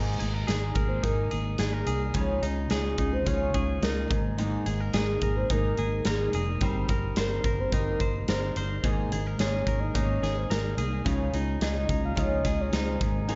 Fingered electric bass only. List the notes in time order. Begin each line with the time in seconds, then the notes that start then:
Already playing: G#1
0.20 G#1
0.48 G#1
0.76 G#1
1.04 G#1
1.32 G#1
1.59 G#1
1.87 C2
2.15 C#2
2.42 C#2
2.71 C#2
2.98 C#2
3.27 C#2
3.54 C#2
3.82 C#2
4.10 G#1
4.66 G#1
4.94 G#1
5.21 G#1
5.50 G#1
5.77 G#1
6.05 G#1
6.33 F1
6.61 G1
6.89 G1
7.16 G1
7.44 G1
7.72 G1
8.00 G1
8.28 G1
8.56 G1
8.84 G#1
9.12 G#1
9.39 G#1
9.67 G#1
9.95 G#1
10.22 G#1
10.50 G#1
10.77 C2
11.06 C#2
11.33 C#2
11.61 C#2
11.89 C#2
12.17 C#2
12.45 C#2
12.73 C#2
13.01 G#1